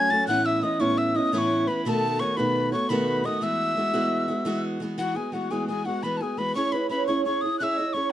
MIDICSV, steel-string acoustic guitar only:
0, 0, Header, 1, 2, 480
1, 0, Start_track
1, 0, Key_signature, 4, "major"
1, 0, Tempo, 348635
1, 390, Time_signature, 9, 3, 24, 8
1, 11180, End_track
2, 0, Start_track
2, 0, Title_t, "Steel-string acoustic guitar"
2, 0, Program_c, 0, 25
2, 0, Note_on_c, 0, 57, 88
2, 0, Note_on_c, 0, 61, 88
2, 0, Note_on_c, 0, 66, 85
2, 143, Note_off_c, 0, 61, 0
2, 143, Note_on_c, 0, 54, 61
2, 156, Note_off_c, 0, 66, 0
2, 160, Note_on_c, 0, 61, 54
2, 171, Note_off_c, 0, 57, 0
2, 177, Note_on_c, 0, 57, 57
2, 188, Note_on_c, 0, 66, 68
2, 371, Note_on_c, 0, 45, 80
2, 376, Note_off_c, 0, 54, 0
2, 381, Note_off_c, 0, 61, 0
2, 381, Note_on_c, 0, 52, 70
2, 388, Note_on_c, 0, 59, 81
2, 392, Note_off_c, 0, 57, 0
2, 398, Note_on_c, 0, 61, 79
2, 401, Note_off_c, 0, 66, 0
2, 406, Note_on_c, 0, 64, 86
2, 831, Note_off_c, 0, 52, 0
2, 848, Note_on_c, 0, 52, 58
2, 860, Note_off_c, 0, 45, 0
2, 863, Note_off_c, 0, 59, 0
2, 865, Note_off_c, 0, 61, 0
2, 868, Note_on_c, 0, 59, 63
2, 878, Note_off_c, 0, 64, 0
2, 881, Note_on_c, 0, 61, 56
2, 893, Note_on_c, 0, 64, 59
2, 1078, Note_off_c, 0, 64, 0
2, 1086, Note_off_c, 0, 61, 0
2, 1095, Note_on_c, 0, 64, 77
2, 1097, Note_off_c, 0, 59, 0
2, 1099, Note_off_c, 0, 52, 0
2, 1103, Note_on_c, 0, 61, 68
2, 1113, Note_on_c, 0, 59, 64
2, 1120, Note_on_c, 0, 52, 57
2, 1123, Note_on_c, 0, 45, 57
2, 1560, Note_off_c, 0, 64, 0
2, 1577, Note_on_c, 0, 64, 56
2, 1586, Note_off_c, 0, 61, 0
2, 1595, Note_off_c, 0, 52, 0
2, 1596, Note_off_c, 0, 45, 0
2, 1603, Note_on_c, 0, 61, 47
2, 1619, Note_off_c, 0, 59, 0
2, 1624, Note_on_c, 0, 59, 48
2, 1819, Note_on_c, 0, 45, 72
2, 1823, Note_off_c, 0, 64, 0
2, 1827, Note_off_c, 0, 59, 0
2, 1830, Note_off_c, 0, 61, 0
2, 1831, Note_on_c, 0, 52, 82
2, 1843, Note_on_c, 0, 59, 82
2, 1846, Note_on_c, 0, 61, 90
2, 1853, Note_on_c, 0, 64, 103
2, 2279, Note_off_c, 0, 52, 0
2, 2296, Note_on_c, 0, 52, 53
2, 2304, Note_off_c, 0, 45, 0
2, 2310, Note_off_c, 0, 59, 0
2, 2313, Note_off_c, 0, 61, 0
2, 2315, Note_on_c, 0, 59, 53
2, 2321, Note_off_c, 0, 64, 0
2, 2329, Note_on_c, 0, 61, 59
2, 2344, Note_on_c, 0, 64, 61
2, 2543, Note_off_c, 0, 52, 0
2, 2547, Note_off_c, 0, 59, 0
2, 2551, Note_on_c, 0, 47, 76
2, 2560, Note_off_c, 0, 61, 0
2, 2563, Note_on_c, 0, 51, 78
2, 2564, Note_on_c, 0, 59, 95
2, 2567, Note_off_c, 0, 64, 0
2, 2573, Note_on_c, 0, 57, 95
2, 2576, Note_on_c, 0, 66, 87
2, 3009, Note_off_c, 0, 51, 0
2, 3025, Note_on_c, 0, 51, 59
2, 3030, Note_off_c, 0, 47, 0
2, 3032, Note_off_c, 0, 59, 0
2, 3037, Note_on_c, 0, 59, 58
2, 3041, Note_off_c, 0, 57, 0
2, 3056, Note_on_c, 0, 57, 67
2, 3061, Note_off_c, 0, 66, 0
2, 3066, Note_on_c, 0, 66, 60
2, 3248, Note_off_c, 0, 66, 0
2, 3256, Note_off_c, 0, 57, 0
2, 3264, Note_on_c, 0, 66, 72
2, 3268, Note_off_c, 0, 51, 0
2, 3270, Note_off_c, 0, 59, 0
2, 3273, Note_on_c, 0, 57, 69
2, 3287, Note_on_c, 0, 59, 61
2, 3291, Note_on_c, 0, 51, 60
2, 3297, Note_on_c, 0, 47, 59
2, 3737, Note_off_c, 0, 66, 0
2, 3743, Note_on_c, 0, 66, 52
2, 3748, Note_off_c, 0, 57, 0
2, 3760, Note_off_c, 0, 51, 0
2, 3763, Note_off_c, 0, 47, 0
2, 3765, Note_on_c, 0, 57, 45
2, 3777, Note_off_c, 0, 59, 0
2, 3783, Note_on_c, 0, 59, 48
2, 3985, Note_off_c, 0, 59, 0
2, 3986, Note_off_c, 0, 66, 0
2, 3987, Note_on_c, 0, 47, 82
2, 3992, Note_off_c, 0, 57, 0
2, 3993, Note_on_c, 0, 51, 91
2, 4002, Note_on_c, 0, 59, 98
2, 4009, Note_on_c, 0, 57, 97
2, 4014, Note_on_c, 0, 66, 94
2, 4441, Note_off_c, 0, 51, 0
2, 4458, Note_on_c, 0, 51, 56
2, 4469, Note_off_c, 0, 47, 0
2, 4471, Note_off_c, 0, 59, 0
2, 4473, Note_off_c, 0, 57, 0
2, 4477, Note_on_c, 0, 59, 60
2, 4490, Note_on_c, 0, 57, 57
2, 4497, Note_off_c, 0, 66, 0
2, 4503, Note_on_c, 0, 66, 67
2, 4689, Note_off_c, 0, 51, 0
2, 4694, Note_on_c, 0, 52, 72
2, 4701, Note_off_c, 0, 59, 0
2, 4708, Note_on_c, 0, 56, 85
2, 4710, Note_off_c, 0, 66, 0
2, 4712, Note_off_c, 0, 57, 0
2, 4717, Note_on_c, 0, 59, 93
2, 4727, Note_on_c, 0, 66, 92
2, 5169, Note_off_c, 0, 52, 0
2, 5174, Note_on_c, 0, 52, 52
2, 5188, Note_off_c, 0, 56, 0
2, 5193, Note_on_c, 0, 56, 61
2, 5195, Note_off_c, 0, 59, 0
2, 5201, Note_on_c, 0, 59, 60
2, 5214, Note_off_c, 0, 66, 0
2, 5219, Note_on_c, 0, 66, 65
2, 5401, Note_off_c, 0, 66, 0
2, 5409, Note_off_c, 0, 59, 0
2, 5418, Note_on_c, 0, 66, 82
2, 5420, Note_off_c, 0, 56, 0
2, 5422, Note_off_c, 0, 52, 0
2, 5425, Note_on_c, 0, 59, 77
2, 5436, Note_on_c, 0, 56, 77
2, 5446, Note_on_c, 0, 52, 67
2, 5886, Note_off_c, 0, 66, 0
2, 5892, Note_on_c, 0, 66, 62
2, 5909, Note_off_c, 0, 59, 0
2, 5914, Note_on_c, 0, 59, 58
2, 5928, Note_off_c, 0, 56, 0
2, 5933, Note_off_c, 0, 52, 0
2, 5934, Note_on_c, 0, 56, 46
2, 6121, Note_off_c, 0, 56, 0
2, 6126, Note_on_c, 0, 52, 83
2, 6128, Note_off_c, 0, 59, 0
2, 6138, Note_on_c, 0, 56, 96
2, 6140, Note_off_c, 0, 66, 0
2, 6144, Note_on_c, 0, 59, 98
2, 6155, Note_on_c, 0, 66, 93
2, 6603, Note_off_c, 0, 52, 0
2, 6608, Note_on_c, 0, 52, 56
2, 6623, Note_off_c, 0, 56, 0
2, 6623, Note_off_c, 0, 59, 0
2, 6629, Note_on_c, 0, 56, 62
2, 6632, Note_off_c, 0, 66, 0
2, 6640, Note_on_c, 0, 59, 69
2, 6653, Note_on_c, 0, 66, 71
2, 6836, Note_off_c, 0, 52, 0
2, 6844, Note_off_c, 0, 56, 0
2, 6852, Note_on_c, 0, 52, 83
2, 6857, Note_off_c, 0, 59, 0
2, 6861, Note_on_c, 0, 56, 84
2, 6866, Note_off_c, 0, 66, 0
2, 6873, Note_on_c, 0, 59, 84
2, 6882, Note_on_c, 0, 66, 88
2, 7068, Note_off_c, 0, 66, 0
2, 7085, Note_on_c, 0, 66, 49
2, 7091, Note_off_c, 0, 59, 0
2, 7101, Note_off_c, 0, 52, 0
2, 7105, Note_off_c, 0, 56, 0
2, 7108, Note_on_c, 0, 59, 46
2, 7129, Note_on_c, 0, 56, 43
2, 7324, Note_on_c, 0, 52, 53
2, 7326, Note_off_c, 0, 56, 0
2, 7337, Note_off_c, 0, 66, 0
2, 7341, Note_off_c, 0, 59, 0
2, 7343, Note_on_c, 0, 56, 57
2, 7357, Note_on_c, 0, 59, 52
2, 7369, Note_on_c, 0, 66, 60
2, 7564, Note_off_c, 0, 66, 0
2, 7572, Note_off_c, 0, 59, 0
2, 7576, Note_off_c, 0, 52, 0
2, 7580, Note_on_c, 0, 66, 64
2, 7586, Note_off_c, 0, 56, 0
2, 7588, Note_on_c, 0, 59, 70
2, 7604, Note_on_c, 0, 56, 60
2, 7608, Note_on_c, 0, 52, 55
2, 7807, Note_off_c, 0, 52, 0
2, 7824, Note_off_c, 0, 66, 0
2, 7824, Note_on_c, 0, 52, 51
2, 7828, Note_off_c, 0, 56, 0
2, 7828, Note_off_c, 0, 59, 0
2, 7845, Note_on_c, 0, 56, 56
2, 7853, Note_on_c, 0, 59, 59
2, 7870, Note_on_c, 0, 66, 62
2, 8044, Note_off_c, 0, 66, 0
2, 8061, Note_on_c, 0, 66, 53
2, 8066, Note_off_c, 0, 52, 0
2, 8067, Note_off_c, 0, 59, 0
2, 8077, Note_off_c, 0, 56, 0
2, 8084, Note_on_c, 0, 59, 49
2, 8104, Note_on_c, 0, 56, 47
2, 8303, Note_off_c, 0, 56, 0
2, 8303, Note_on_c, 0, 52, 73
2, 8305, Note_off_c, 0, 66, 0
2, 8308, Note_off_c, 0, 59, 0
2, 8320, Note_on_c, 0, 56, 79
2, 8325, Note_on_c, 0, 59, 76
2, 8337, Note_on_c, 0, 66, 82
2, 8529, Note_off_c, 0, 66, 0
2, 8545, Note_on_c, 0, 66, 54
2, 8546, Note_off_c, 0, 52, 0
2, 8554, Note_off_c, 0, 56, 0
2, 8557, Note_off_c, 0, 59, 0
2, 8571, Note_on_c, 0, 59, 47
2, 8587, Note_on_c, 0, 56, 37
2, 8774, Note_off_c, 0, 56, 0
2, 8775, Note_on_c, 0, 52, 50
2, 8787, Note_off_c, 0, 66, 0
2, 8789, Note_off_c, 0, 59, 0
2, 8790, Note_on_c, 0, 56, 56
2, 8806, Note_on_c, 0, 59, 51
2, 8818, Note_on_c, 0, 66, 57
2, 9018, Note_off_c, 0, 52, 0
2, 9023, Note_on_c, 0, 61, 68
2, 9030, Note_off_c, 0, 56, 0
2, 9036, Note_on_c, 0, 64, 73
2, 9037, Note_off_c, 0, 59, 0
2, 9043, Note_off_c, 0, 66, 0
2, 9045, Note_on_c, 0, 68, 74
2, 9054, Note_on_c, 0, 73, 78
2, 9236, Note_off_c, 0, 73, 0
2, 9253, Note_on_c, 0, 73, 56
2, 9262, Note_off_c, 0, 68, 0
2, 9266, Note_off_c, 0, 61, 0
2, 9273, Note_off_c, 0, 64, 0
2, 9279, Note_on_c, 0, 68, 48
2, 9297, Note_on_c, 0, 64, 47
2, 9491, Note_off_c, 0, 64, 0
2, 9493, Note_on_c, 0, 61, 55
2, 9501, Note_off_c, 0, 73, 0
2, 9507, Note_on_c, 0, 64, 58
2, 9508, Note_off_c, 0, 68, 0
2, 9524, Note_on_c, 0, 68, 52
2, 9535, Note_on_c, 0, 73, 53
2, 9725, Note_off_c, 0, 73, 0
2, 9739, Note_off_c, 0, 68, 0
2, 9741, Note_off_c, 0, 61, 0
2, 9742, Note_on_c, 0, 73, 65
2, 9748, Note_off_c, 0, 64, 0
2, 9755, Note_on_c, 0, 68, 55
2, 9763, Note_on_c, 0, 64, 57
2, 9776, Note_on_c, 0, 61, 53
2, 9967, Note_off_c, 0, 61, 0
2, 9981, Note_off_c, 0, 64, 0
2, 9984, Note_on_c, 0, 61, 52
2, 9985, Note_off_c, 0, 73, 0
2, 9992, Note_off_c, 0, 68, 0
2, 9998, Note_on_c, 0, 64, 58
2, 10013, Note_on_c, 0, 68, 59
2, 10025, Note_on_c, 0, 73, 58
2, 10201, Note_off_c, 0, 73, 0
2, 10217, Note_on_c, 0, 73, 54
2, 10226, Note_off_c, 0, 61, 0
2, 10227, Note_off_c, 0, 68, 0
2, 10233, Note_off_c, 0, 64, 0
2, 10244, Note_on_c, 0, 68, 47
2, 10265, Note_on_c, 0, 64, 43
2, 10462, Note_off_c, 0, 64, 0
2, 10463, Note_off_c, 0, 73, 0
2, 10469, Note_on_c, 0, 61, 74
2, 10472, Note_off_c, 0, 68, 0
2, 10478, Note_on_c, 0, 64, 78
2, 10489, Note_on_c, 0, 68, 80
2, 10501, Note_on_c, 0, 73, 98
2, 10693, Note_off_c, 0, 73, 0
2, 10709, Note_off_c, 0, 61, 0
2, 10709, Note_on_c, 0, 73, 56
2, 10711, Note_off_c, 0, 68, 0
2, 10713, Note_off_c, 0, 64, 0
2, 10728, Note_on_c, 0, 68, 48
2, 10749, Note_on_c, 0, 64, 40
2, 10935, Note_on_c, 0, 61, 53
2, 10937, Note_off_c, 0, 64, 0
2, 10949, Note_off_c, 0, 73, 0
2, 10952, Note_off_c, 0, 68, 0
2, 10953, Note_on_c, 0, 64, 56
2, 10968, Note_on_c, 0, 68, 54
2, 10982, Note_on_c, 0, 73, 55
2, 11180, Note_off_c, 0, 61, 0
2, 11180, Note_off_c, 0, 64, 0
2, 11180, Note_off_c, 0, 68, 0
2, 11180, Note_off_c, 0, 73, 0
2, 11180, End_track
0, 0, End_of_file